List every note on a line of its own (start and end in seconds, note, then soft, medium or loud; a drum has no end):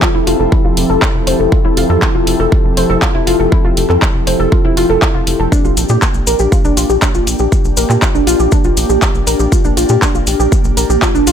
0.00 5.48 F3 medium
0.00 5.48 C4 medium
0.00 5.48 E4 medium
0.00 0.10 F4 medium
0.00 11.32 G4 medium
0.00 5.48 A4 medium
0.00 kick loud
0.00 clap loud
0.15 0.23 F1 medium
0.15 0.22 E4 loud
0.27 0.35 F1 loud
0.27 0.39 F4 loud
0.27 open hi-hat medium
0.40 0.48 F1 medium
0.40 0.51 A4 medium
0.52 0.64 E4 medium
0.52 kick loud
0.65 0.73 F1 medium
0.65 0.76 F4 medium
0.77 0.85 F1 loud
0.77 open hi-hat loud
0.90 0.98 F1 medium
0.90 1.01 A4 medium
1.02 kick loud
1.02 clap loud
1.15 1.23 F1 medium
1.27 1.35 F1 medium
1.27 1.32 C5 medium
1.27 open hi-hat loud
1.40 1.48 F1 medium
1.40 1.47 A4 medium
1.52 1.60 F4 medium
1.52 kick loud
1.65 1.73 F1 medium
1.65 1.72 E4 medium
1.77 1.85 F1 loud
1.77 1.89 F4 loud
1.77 open hi-hat loud
1.90 1.98 F2 medium
1.90 2.01 A4 medium
2.02 2.14 E4 medium
2.02 kick loud
2.02 clap loud
2.15 2.23 F1 medium
2.15 2.26 F4 medium
2.27 2.35 F1 loud
2.27 open hi-hat loud
2.40 2.48 F1 loud
2.40 2.51 A4 medium
2.52 kick loud
2.65 2.73 F1 medium
2.77 2.85 F1 medium
2.77 2.82 C5 medium
2.77 open hi-hat loud
2.90 2.98 F1 medium
2.90 2.97 A4 medium
3.02 3.10 F4 medium
3.02 kick loud
3.02 clap loud
3.15 3.23 F1 medium
3.15 3.22 E4 loud
3.27 3.35 F1 loud
3.27 3.39 F4 loud
3.27 open hi-hat loud
3.40 3.48 F1 medium
3.40 3.51 A4 medium
3.52 3.64 E4 medium
3.52 kick loud
3.65 3.73 F1 medium
3.65 3.76 F4 medium
3.77 3.85 F1 loud
3.77 open hi-hat loud
3.90 3.98 F2 medium
3.90 4.01 A4 medium
3.90 clap soft
4.02 kick loud
4.02 clap loud
4.15 4.23 F1 medium
4.27 4.35 F1 loud
4.27 4.32 C5 medium
4.27 open hi-hat medium
4.40 4.48 F1 medium
4.40 4.47 A4 medium
4.52 4.60 F4 medium
4.52 kick loud
4.65 4.73 F1 medium
4.65 4.72 E4 loud
4.77 4.85 F1 loud
4.77 4.89 F4 loud
4.77 open hi-hat loud
4.90 4.98 F1 medium
4.90 5.01 A4 medium
5.02 5.14 E4 medium
5.02 kick loud
5.02 clap loud
5.15 5.23 F1 medium
5.15 5.26 F4 medium
5.27 5.35 F1 loud
5.27 open hi-hat loud
5.40 5.48 F1 medium
5.40 5.51 A4 medium
5.52 11.32 A#3 medium
5.52 5.64 D4 medium
5.52 11.32 D4 medium
5.52 kick loud
5.52 cabasa medium
5.65 5.73 A#1 medium
5.65 5.76 F4 medium
5.65 cabasa soft
5.77 5.85 A#1 loud
5.77 open hi-hat loud
5.77 cabasa medium
5.89 5.98 A#2 medium
5.89 6.01 G4 medium
5.89 cabasa soft
6.02 kick loud
6.02 clap loud
6.02 cabasa medium
6.14 6.23 A#1 medium
6.14 cabasa soft
6.27 6.35 A#1 loud
6.27 6.32 A#4 medium
6.27 open hi-hat medium
6.27 cabasa medium
6.39 6.48 A#1 medium
6.39 6.47 G4 medium
6.39 cabasa soft
6.52 6.60 F4 medium
6.52 kick loud
6.52 cabasa medium
6.65 6.73 A#1 medium
6.65 6.72 D4 loud
6.65 cabasa soft
6.77 6.85 A#1 loud
6.77 6.89 F4 loud
6.77 open hi-hat loud
6.77 cabasa loud
6.90 6.98 A#1 medium
6.90 7.01 G4 medium
6.90 cabasa soft
7.02 7.14 D4 medium
7.02 kick loud
7.02 clap loud
7.02 cabasa medium
7.15 7.23 A#1 medium
7.15 7.26 F4 medium
7.15 cabasa soft
7.27 7.35 A#1 loud
7.27 open hi-hat medium
7.27 cabasa loud
7.39 7.48 A#1 medium
7.39 7.51 G4 medium
7.39 cabasa soft
7.52 kick loud
7.52 cabasa soft
7.65 7.73 A#1 medium
7.65 cabasa soft
7.77 7.85 A#1 loud
7.77 7.82 A#4 medium
7.77 open hi-hat loud
7.77 cabasa medium
7.90 7.98 A#2 medium
7.90 7.97 G4 medium
7.90 clap soft
7.90 cabasa soft
8.02 8.10 F4 medium
8.02 kick loud
8.02 clap loud
8.02 cabasa medium
8.15 8.23 A#1 medium
8.15 8.22 D4 loud
8.15 cabasa soft
8.27 8.35 A#1 loud
8.27 8.39 F4 loud
8.27 open hi-hat medium
8.27 cabasa medium
8.40 8.48 A#1 medium
8.40 8.51 G4 medium
8.40 cabasa soft
8.52 8.64 D4 medium
8.52 kick loud
8.52 cabasa medium
8.64 8.73 A#1 medium
8.64 8.76 F4 medium
8.64 cabasa soft
8.77 8.85 A#1 loud
8.77 open hi-hat loud
8.77 cabasa medium
8.90 8.98 A#1 medium
8.90 9.01 G4 medium
8.90 cabasa soft
9.02 kick loud
9.02 clap loud
9.02 cabasa soft
9.15 9.23 A#1 medium
9.15 cabasa soft
9.27 9.35 A#1 loud
9.27 9.32 A#4 medium
9.27 open hi-hat medium
9.27 cabasa medium
9.39 9.48 A#1 medium
9.39 9.47 G4 medium
9.39 cabasa soft
9.52 9.60 F4 medium
9.52 kick loud
9.52 cabasa medium
9.65 9.73 A#1 medium
9.65 9.72 D4 loud
9.65 cabasa soft
9.77 9.85 A#1 loud
9.77 9.89 F4 loud
9.77 open hi-hat loud
9.77 cabasa medium
9.89 9.98 A#2 medium
9.89 10.01 G4 medium
9.89 cabasa soft
10.02 10.14 D4 medium
10.02 kick loud
10.02 clap loud
10.02 cabasa medium
10.15 10.23 A#1 medium
10.15 10.26 F4 medium
10.15 cabasa soft
10.27 10.35 A#1 loud
10.27 open hi-hat medium
10.27 cabasa medium
10.40 10.48 A#1 medium
10.40 10.51 G4 medium
10.40 cabasa soft
10.52 kick loud
10.52 cabasa medium
10.64 10.73 A#1 medium
10.64 cabasa soft
10.77 10.85 A#1 loud
10.77 10.82 A#4 medium
10.77 open hi-hat loud
10.77 cabasa medium
10.90 10.98 A#1 medium
10.90 10.97 G4 medium
10.90 cabasa soft
11.02 11.10 F4 medium
11.02 kick loud
11.02 clap loud
11.02 cabasa soft
11.15 11.23 A#1 medium
11.15 11.22 D4 loud
11.15 cabasa soft
11.27 11.32 A#1 loud
11.27 11.32 F4 loud
11.27 open hi-hat medium
11.27 cabasa medium